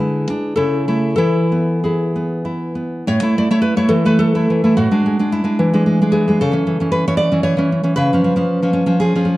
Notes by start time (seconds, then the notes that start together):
Already playing: D3 G#3 G#4 B4
0.00 E4
0.30 D4
0.56 C#3 E4 A4
0.88 A3 E4
1.16 E3 E4 A4
1.52 B3
1.84 E4 G#4
2.16 B3
2.45 E4
2.75 B3
3.07 A2 C#5
3.22 A3 E4
3.38 A3 D5
3.51 A3 E4 C#5
3.62 B4
3.76 A3 E4 C#5
3.89 E3 A4
4.05 A3 E4 B4
4.19 A3 A4
4.35 A3 E4
4.50 E3
4.64 A3 E4
4.77 A2 F#4
4.91 G#3 D4
5.06 G#3
5.19 G#3 D4
5.32 E4
5.44 G#3 D4
5.59 E3
5.73 G#3 D4
5.86 G#3
6.02 G#3 D4
6.12 E3 G#4
6.28 G#3 D4
6.41 C#3 A4
6.52 E3 C#4
6.67 E3
6.80 E3 C#4
6.92 B4
7.07 E3 C#4 C#5
7.17 C#4 D5
7.32 E3 C#4
7.43 E3 C#5
7.57 E3 C#4
7.72 C#4
7.84 E3 C#4
7.96 C#3 B4
8.13 F3 C#4
8.24 F3
8.36 F3 C#4
8.62 F3 C#4
8.73 C#4
8.86 F3 C#4
9.00 F3 G#4
9.15 F3 C#4
9.25 C#4